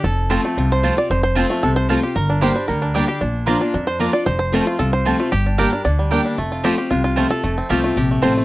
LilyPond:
<<
  \new Staff \with { instrumentName = "Mandolin" } { \time 4/4 \key f \mixolydian \tempo 4 = 227 r4 <c' f' c'' a''>8 r4. <c' f' c'' a''>8 r8 | r4 <c' f' c'' a''>8 r4. <c' f' c'' a''>8 r8 | r4 <bes g' d'' g''>8 r4. <bes g' d'' g''>8 r8 | r4 <bes f' d'' bes''>8 r4. <bes f' d'' bes''>8 r8 |
r4 <c' f' c'' a''>8 r4. <c' f' c'' a''>8 r8 | r4 <bes g' d'' g''>8 r4. <bes g' d'' g''>8 r8 | r4 <c' f' c'' a''>8 r4. <c' f' c'' a''>8 r8 | r4 <c' f' c'' a''>8 r4. <c' f' c'' a''>8 r8 | }
  \new Staff \with { instrumentName = "Five-string banjo" } { \time 4/4 \key f \mixolydian << { a'4. r4 c''4 d''8 | c''8 c''4. a'8 c''4. | bes'4 c''4 bes'4. r8 | r2 r8 c''4 d''8 |
c''8 c''4. a'8 c''4. | g'4 bes'4 d''4. r8 | r4 g'4 f'8 f'4 a'8~ | a'8 r2 r8 c''4 | } \\ { r4 c'8 a8 f'4 f'4~ | f'8 r8 c'8 a4. f'8 g'8 | r8 d'4 g4 d'8 g8 g'8 | d'4 bes8 d'8 d'4 d'4 |
r4 a8 f'4. f'8 a8 | r8 d'4 d'4 g8 d'8 g8 | a8 f'4 g'4. a4 | a8 c'8 g'8 a8 g'8 a4 a8 | } >> }
  \new Staff \with { instrumentName = "Steel-string acoustic guitar" } { \time 4/4 \key f \mixolydian << { r4 <f a c' f'>8 <c' f'>8 r4 <f a c' f'>8 <c' f'>8 | r4 <f a c' f'>8 <c' f'>8 r4 <f a c' f'>8 <c' f'>8 | r4 <g bes d' g'>8 <d' g'>8 r4 <g bes d' g'>8 <d' g'>8 | r4 <f bes d' f'>8 <d' f'>8 r4 <f bes d' f'>8 <d' f'>8 |
r4 <f a c' f'>8 <c' f'>8 r4 <f a c' f'>8 <c' f'>8 | r4 <g bes d' g'>8 <d' g'>8 r4 <g bes d' g'>4 | r4 <f a c' f'>8 <c' f'>8 r4 <f a c' f'>8 <c' f'>8 | r4 <f a c' f'>8 <c' f'>8 r4 <f a c' f'>4 | } \\ { f,2 c2 | f,2 c2 | g,2 d2 | bes,2 f,2 |
f,2 c2 | g,2 d2 | f,2 c2 | f,2 c2 | } >> }
  \new Staff \with { instrumentName = "Upright bass" } { \clef bass \time 4/4 \key f \mixolydian f,,2 c,2 | f,,2 c,2 | g,,2 d,2 | bes,,2 f,2 |
f,,2 c,2 | g,,2 d,2 | f,,2 c,2 | f,,4 c,4 bes,,4 a,,4 | }
>>